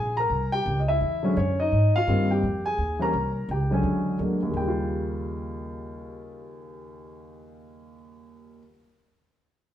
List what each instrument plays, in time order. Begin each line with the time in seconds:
Already playing: upright bass A#1, grand piano G#4 G#5
0.17 grand piano A#4 A#5
0.30 upright bass C2
0.52 grand piano G4 G5
0.66 upright bass C#2
0.80 grand piano D#5
0.88 grand piano E4 E5
1.01 upright bass E2
1.23 grand piano D3 F#3 G#3 C#4
1.37 upright bass F#2, grand piano C#4 C#5
1.60 grand piano D#4 D#5
1.72 upright bass G#2
1.96 grand piano F4 F5
2.07 upright bass G2, grand piano D#3 G3 A#3 C4
2.31 grand piano G4 G5
2.43 upright bass F2
2.66 grand piano G#4 G#5
2.78 upright bass D#2
2.99 grand piano E3 G3 A#3 C#4 A#5
3.04 grand piano A#4
3.13 upright bass C2
3.49 upright bass C#2, grand piano G5
3.53 grand piano G4
3.71 grand piano D3 F#3 G#3 C#4 G#5
3.75 grand piano G#4
3.83 upright bass E2
4.19 upright bass D2, grand piano D3 F#3 G#3 A#3
4.43 grand piano D#2
4.51 upright bass D#2, grand piano C#3
4.57 grand piano G3 G5
4.68 grand piano F4